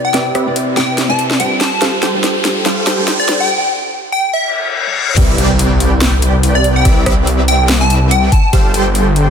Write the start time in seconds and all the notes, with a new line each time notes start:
Already playing: C3 C4 E4 G4 B4 D5 G5, riser
0.05 G5
0.13 C3 C4 E4 G4 B4 D5 E5, snare, closed hi-hat
0.35 C4 G4 B4 D5 E5, cross-stick, closed hi-hat
0.46 C3 C4 E4 B4 D5
0.56 closed hi-hat
0.76 C3 C4 E4 B4 D5 G5, snare, closed hi-hat
0.98 snare, closed hi-hat
1.08 C3 C4 E4 B4 D5 A5
1.19 closed hi-hat
1.31 snare
1.39 G3 D4 F4 A4 C5 G5, closed hi-hat
1.61 A5, snare, closed hi-hat
1.81 G3 D4 F4 G4 A4 C5 F5, snare, closed hi-hat
2.02 G3 G4 A4 C5 G5, snare, closed hi-hat
2.13 G3 D4 F4 A4 C5
2.24 snare, closed hi-hat
2.44 G3 D4 F4 A4 C5, snare, closed hi-hat
2.65 G3 D4 F4 G4 A4 C5 F5, snare, closed hi-hat
2.87 G3 G4 A4 C5 G5, snare, closed hi-hat
2.97 G3 D4 F4 A4 C5
3.08 snare, closed hi-hat
3.20 D5
3.28 G3 D4 F4 A4 C5, snare, closed hi-hat
3.40 G5
4.12 G5
4.33 E5, reverse cymbal
4.87 high tom
4.96 mid tom
5.08 mid tom
5.17 C2 C4 G4 B4 D5 E5, kick, closed hi-hat, crash, impact
5.38 C2 C4 G4 B4 D5 G5, closed hi-hat
5.59 closed hi-hat
5.80 closed hi-hat
6.01 snare, closed hi-hat
6.22 closed hi-hat
6.43 closed hi-hat
6.55 D5
6.64 closed hi-hat
6.76 G5
6.85 C2 C4 G4 B4 D5 E5, kick, closed hi-hat
7.06 C2 C4 G4 B4 D5 E5, kick, cross-stick, closed hi-hat
7.27 closed hi-hat
7.48 G5, closed hi-hat
7.69 snare, closed hi-hat
7.81 A5
7.90 closed hi-hat
8.11 G5, closed hi-hat
8.32 A5, kick, closed hi-hat
8.53 G1 G3 G4 A4 C5 F5, kick, closed hi-hat
8.74 G1 G3 G4 A4 C5 G5, closed hi-hat
8.95 closed hi-hat
9.16 closed hi-hat